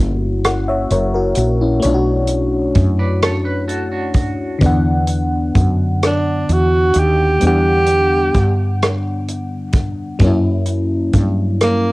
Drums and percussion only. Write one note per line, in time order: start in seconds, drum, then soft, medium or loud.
0.44 cross-stick medium
0.44 closed hi-hat medium
0.90 closed hi-hat soft
1.35 closed hi-hat medium
1.82 closed hi-hat medium
2.27 closed hi-hat soft
2.75 kick medium
2.75 closed hi-hat medium
3.22 cross-stick medium
3.22 closed hi-hat medium
3.69 closed hi-hat soft
4.14 kick medium
4.14 closed hi-hat medium
4.61 kick loud
4.61 closed hi-hat medium
5.07 closed hi-hat soft
5.55 kick medium
5.55 closed hi-hat medium
6.03 cross-stick medium
6.03 closed hi-hat medium
6.49 closed hi-hat soft
6.94 closed hi-hat medium
7.41 closed hi-hat medium
7.87 closed hi-hat soft
8.35 kick medium
8.35 closed hi-hat medium
8.82 cross-stick medium
8.82 closed hi-hat medium
9.28 closed hi-hat soft
9.73 kick medium
9.73 closed hi-hat medium
10.19 kick medium
10.19 closed hi-hat medium
10.66 closed hi-hat soft
11.13 kick medium
11.13 closed hi-hat medium
11.61 cross-stick medium
11.61 closed hi-hat medium